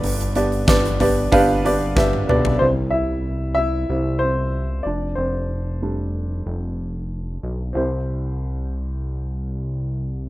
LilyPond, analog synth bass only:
\new Staff \with { instrumentName = "Analog synth bass" } { \clef bass \time 4/4 \key c \major \tempo 4 = 93 g,,2 g,,4. b,,8 | c,2 c,4. f,,8 | f,,2 f,,4. b,,8 | c,1 | }